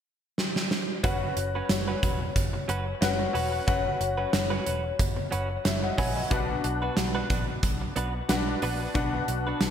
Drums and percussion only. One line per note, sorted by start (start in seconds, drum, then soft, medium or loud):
0.38 snare medium
0.56 snare medium
0.71 snare medium
1.04 kick loud
1.04 closed hi-hat medium
1.37 closed hi-hat medium
1.69 snare loud
1.69 closed hi-hat medium
2.03 kick medium
2.03 closed hi-hat medium
2.36 kick medium
2.36 closed hi-hat medium
2.69 closed hi-hat medium
3.02 snare loud
3.02 closed hi-hat medium
3.35 open hi-hat medium
3.68 kick loud
3.68 closed hi-hat medium
4.01 closed hi-hat medium
4.33 snare loud
4.33 closed hi-hat medium
4.66 closed hi-hat medium
4.99 kick medium
4.99 closed hi-hat medium
5.32 closed hi-hat medium
5.65 snare loud
5.65 closed hi-hat medium
5.98 kick medium
5.98 open hi-hat medium
6.31 kick loud
6.31 closed hi-hat medium
6.64 closed hi-hat medium
6.97 snare loud
6.97 closed hi-hat medium
7.30 kick loud
7.30 closed hi-hat medium
7.63 kick medium
7.63 closed hi-hat medium
7.96 closed hi-hat medium
8.29 snare loud
8.29 closed hi-hat medium
8.62 open hi-hat medium
8.95 kick loud
8.95 closed hi-hat medium
9.28 closed hi-hat medium
9.61 snare loud
9.61 closed hi-hat medium